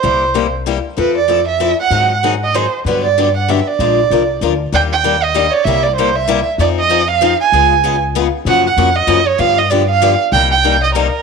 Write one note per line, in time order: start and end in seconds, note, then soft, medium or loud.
0.00 0.79 C2 medium
0.00 0.23 C3 medium
0.00 0.23 G3 medium
0.00 0.23 A#3 medium
0.00 0.23 E4 medium
0.00 0.24 G4 medium
0.00 0.50 C5 medium
0.34 0.45 C3 medium
0.34 0.45 G3 medium
0.34 0.46 A#3 medium
0.34 0.46 E4 medium
0.34 0.46 G4 medium
0.66 0.77 C3 medium
0.66 0.77 G3 medium
0.66 0.77 A#3 medium
0.66 0.77 E4 medium
0.66 0.77 G4 medium
0.97 1.72 F2 medium
0.97 1.17 F3 medium
0.97 1.17 C4 medium
0.97 1.17 E4 medium
0.97 1.17 A4 medium
0.97 1.15 B4 medium
1.18 1.46 D5 medium
1.28 1.39 F3 medium
1.28 1.39 C4 medium
1.28 1.40 E4 medium
1.28 1.40 A4 medium
1.48 1.77 E5 medium
1.60 1.71 F3 medium
1.60 1.71 C4 medium
1.60 1.71 E4 medium
1.60 1.71 A4 medium
1.80 2.20 F#5 loud
1.91 2.66 G#2 medium
1.91 2.11 D#3 medium
1.91 2.11 F#3 medium
1.91 2.11 C4 medium
1.91 2.11 D#4 medium
1.91 2.12 G#4 medium
2.23 2.33 D#3 medium
2.23 2.34 F#3 medium
2.23 2.34 C4 medium
2.23 2.34 D#4 medium
2.23 2.34 G#4 medium
2.44 2.57 D#5 medium
2.54 2.65 D#3 medium
2.54 2.65 F#3 medium
2.54 2.65 C4 medium
2.54 2.65 D#4 medium
2.54 2.65 G#4 medium
2.54 2.80 C5 medium
2.85 3.60 G2 medium
2.85 3.05 D3 medium
2.85 3.06 F#3 medium
2.85 3.06 B3 medium
2.85 3.06 D4 medium
2.85 3.06 G4 medium
2.85 3.03 B4 medium
3.05 3.33 D5 medium
3.18 3.28 D3 medium
3.18 3.28 F#3 medium
3.18 3.28 B3 medium
3.18 3.28 D4 medium
3.18 3.28 G4 medium
3.37 3.52 F#5 medium
3.48 3.59 D3 medium
3.48 3.59 F#3 medium
3.48 3.59 B3 medium
3.48 3.59 D4 medium
3.48 3.59 G4 medium
3.48 3.69 E5 medium
3.68 4.42 D5 medium
3.79 4.04 A#1 medium
3.79 3.99 F3 medium
3.79 3.99 G#3 medium
3.79 3.99 D4 medium
3.79 3.99 F4 medium
3.79 4.00 A#4 medium
4.10 4.37 C2 medium
4.10 4.21 F3 medium
4.10 4.22 G#3 medium
4.10 4.22 D4 medium
4.10 4.22 F4 medium
4.10 4.22 A#4 medium
4.41 4.68 D2 medium
4.41 4.52 F3 medium
4.41 4.52 G#3 medium
4.41 4.53 D4 medium
4.41 4.52 F4 medium
4.41 4.53 A#4 medium
4.72 5.47 D#2 medium
4.72 4.92 D#3 medium
4.72 4.92 G3 medium
4.72 4.93 A#3 medium
4.72 4.93 D4 medium
4.72 4.93 G4 medium
4.72 4.83 G5 medium
4.93 5.25 G5 medium
5.04 5.15 D#3 medium
5.04 5.15 G3 medium
5.04 5.15 A#3 medium
5.04 5.15 D4 medium
5.04 5.15 G4 medium
5.24 5.51 D#5 medium
5.34 5.45 D#3 medium
5.34 5.46 G3 medium
5.34 5.46 A#3 loud
5.34 5.46 D4 medium
5.34 5.46 G4 medium
5.50 5.55 C#5 medium
5.50 5.66 D5 medium
5.65 6.40 C2 medium
5.65 5.86 C3 medium
5.65 5.86 G3 medium
5.65 5.86 A#3 medium
5.65 5.86 E4 medium
5.65 5.87 G4 medium
5.65 5.85 E5 loud
5.83 5.96 D5 medium
5.96 6.08 C3 medium
5.96 6.08 G3 medium
5.96 6.09 A#3 medium
5.96 6.09 E4 medium
5.96 6.09 G4 medium
5.96 6.17 C5 medium
6.16 6.47 E5 medium
6.28 6.39 C3 medium
6.28 6.39 G3 loud
6.28 6.39 A#3 medium
6.28 6.39 E4 loud
6.28 6.39 G4 medium
6.58 7.34 F2 medium
6.58 6.79 F3 medium
6.58 6.80 C4 medium
6.58 6.80 D#4 medium
6.58 6.80 G#4 medium
6.58 6.69 D5 medium
6.80 7.08 D#5 medium
6.90 7.01 F3 medium
6.90 7.01 C4 medium
6.90 7.01 D#4 medium
6.90 7.02 G#4 medium
7.11 7.39 F5 loud
7.21 7.32 F3 medium
7.21 7.33 C4 loud
7.21 7.33 D#4 medium
7.21 7.33 G#4 medium
7.41 7.99 G#5 loud
7.52 8.27 C#2 medium
7.52 7.73 C#3 medium
7.52 7.73 G#3 medium
7.52 7.73 B3 medium
7.52 7.73 F4 medium
7.52 7.73 G#4 medium
7.84 7.95 C#3 medium
7.84 7.95 G#3 medium
7.84 7.95 B3 medium
7.84 7.95 F4 medium
7.84 7.95 G#4 medium
8.15 8.26 C#3 medium
8.15 8.26 G#3 medium
8.15 8.26 B3 medium
8.15 8.26 F4 medium
8.15 8.27 G#4 medium
8.45 8.71 F#2 medium
8.45 8.66 C#3 medium
8.45 8.66 F3 medium
8.45 8.67 A#3 medium
8.45 8.67 C#4 medium
8.45 8.67 F#4 medium
8.45 8.65 F#5 loud
8.67 8.97 F#5 medium
8.77 9.04 F2 medium
8.77 8.88 C#3 medium
8.77 8.89 F3 medium
8.77 8.89 A#3 medium
8.77 8.89 C#4 medium
8.77 8.89 F#4 medium
8.96 9.29 D#5 loud
9.07 9.34 F#2 medium
9.07 9.19 C#3 medium
9.07 9.19 F3 medium
9.07 9.19 A#3 loud
9.07 9.19 C#4 loud
9.07 9.19 F#4 medium
9.27 9.41 C#5 loud
9.38 10.14 G2 medium
9.38 9.59 D3 medium
9.38 9.59 F3 medium
9.38 9.59 B3 medium
9.38 9.60 D4 medium
9.38 9.60 G4 medium
9.38 9.60 F5 loud
9.58 9.72 D#5 medium
9.70 9.81 D3 medium
9.70 9.82 F3 medium
9.70 9.82 B3 medium
9.70 9.82 D4 medium
9.70 9.82 G4 medium
9.70 9.89 D5 medium
9.90 10.19 F5 loud
10.02 10.13 D3 medium
10.02 10.13 F3 medium
10.02 10.13 B3 loud
10.02 10.13 D4 loud
10.02 10.13 G4 medium
10.32 11.08 C2 medium
10.32 10.53 C3 medium
10.32 10.53 G3 medium
10.32 10.54 A#3 medium
10.32 10.54 D#4 medium
10.32 10.54 G4 medium
10.32 10.51 G5 loud
10.52 10.81 G5 loud
10.63 10.75 C3 medium
10.63 10.76 G3 medium
10.63 10.75 A#3 medium
10.63 10.76 D#4 medium
10.63 10.76 G4 medium
10.83 10.95 D#5 medium
10.95 11.06 C3 medium
10.95 11.06 G3 medium
10.95 11.07 A#3 loud
10.95 11.07 D#4 medium
10.95 11.07 G4 medium
10.95 11.22 A#4 medium